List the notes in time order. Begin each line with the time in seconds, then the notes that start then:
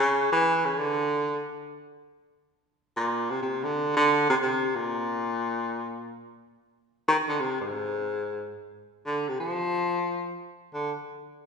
0.00 C#3
0.32 E3
0.65 C#3
0.77 D3
2.97 A#2
3.30 C3
3.42 C3
3.63 D3
3.97 D3
4.30 C3
4.42 C3
4.75 A#2
7.08 D#3
7.29 D3
7.40 C3
7.61 G#2
9.06 D3
9.28 C3
9.40 F3
10.74 D3